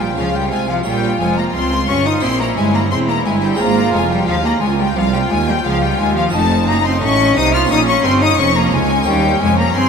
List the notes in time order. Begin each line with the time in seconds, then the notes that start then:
Already playing: A#1 A#2 F4 G#4
0.00 G3 G5
0.17 C#2 C#3 F3 F4 F5
0.34 G3 G5
0.51 C2 C3 G#3 G#5
0.69 F3 F5
0.83 A#1 A#2 G3 F4 C#5 G5
1.20 F1 F2 G#3 G#5
1.38 A#3 A#5
1.54 C#2 C4 C6
1.88 G1 G2 C#4 C#6
2.06 D#4 D#6
2.20 A#1 A#2 C4 E4 C5 C6
2.40 A#3 A#5
2.57 G1 G2 G#3 G#5
2.74 A#3 A#5
2.91 E1 E2 C4 E4 C6
3.09 A#3 A#5
3.25 G1 G2 G#3 G#5
3.43 G3 G5
3.55 G#1 G#3 F4 C5 A#5
3.59 G#2 A#3 F4 A#5
3.93 F1 F2 G#3 G#5
4.10 G3 G5
4.28 D#2 F3 F4 F5
4.44 A#3 A#5
4.62 C#2 G#3 G#5
4.79 G3 G5
4.96 C2 F3 F4 F5
5.13 G3 G5
5.30 D#2 G#3 G#5
5.48 G3 G5
5.65 C#2 F3 F4 F5
5.82 G3 G5
5.99 D#2 G#3 G#5
6.15 F3 F5
6.29 C4 F4 D#5
6.33 F1 F2 A3 D#4 A5
6.67 F#1 F#2 A#3 A#5
6.85 C4 C6
7.01 A1 A2 C#4 C#6
7.36 C2 C3 D#4 D#6
7.53 F4 F6
7.65 A#3 F4 C#5
7.70 A#1 A#2 C#4 D#4 D#6
7.88 C#4 C#6
8.04 G1 G2 C4 C6
8.21 D#4 D#6
8.38 F1 F2 C#4 C#6
8.56 A#3 A#5
8.72 C#2 G#3 G#5
9.02 A#3 D#4 C#5
9.06 D#2 G3 C#4 G5
9.41 F1 F2 G#3 G#5
9.58 A#3 A#5
9.75 G1 G2 C4 C6